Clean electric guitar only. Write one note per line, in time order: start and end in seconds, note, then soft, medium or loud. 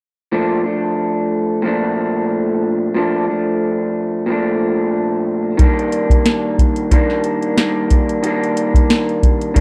0.32 0.65 A#2 medium
0.32 0.65 F3 medium
0.32 0.65 A3 medium
0.32 0.63 D4 medium
0.64 1.63 F3 soft
0.64 1.64 A3 soft
0.64 1.67 D4 soft
1.62 2.93 A#2 medium
1.62 2.95 F3 medium
1.62 2.95 A3 medium
1.67 2.96 D4 medium
2.94 3.28 A#2 medium
2.94 3.29 F3 medium
2.94 3.28 A3 medium
2.94 3.26 D4 medium
3.28 4.27 F3 soft
3.28 4.28 A3 soft
3.28 4.31 D4 soft
4.26 5.57 A#2 medium
4.26 5.59 F3 medium
4.26 5.61 A3 medium
4.31 5.62 D4 medium
5.57 6.91 D#3 medium
5.57 6.91 G3 medium
5.62 6.92 A#3 medium
5.62 6.92 D4 medium
6.91 7.56 D#3 medium
6.91 7.57 G3 medium
6.91 7.58 A#3 medium
6.91 7.58 D4 medium
7.56 8.22 D#3 soft
7.56 8.25 G3 medium
7.56 8.26 A#3 medium
7.56 8.25 D4 medium
8.23 9.54 D#3 medium
8.23 9.55 G3 medium
8.23 9.55 A#3 medium
8.28 9.56 D4 medium
9.54 9.60 D#3 medium
9.54 9.60 G3 medium
9.54 9.60 A#3 medium
9.54 9.60 D4 medium